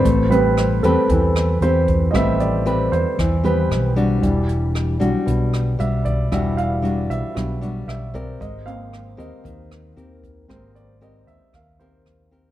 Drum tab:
HH |xxxxxxxx|xxxxxxxx|xxxxxxxx|xxxxxxxx|
SD |--r--r--|r---r-r-|--r--r--|r---r-r-|
BD |o---o--o|o---o---|o---o--o|o---o--o|

HH |xxxxxxxx|xxxxxxxx|
SD |--r--r--|r---r-r-|
BD |o---o--o|o---o---|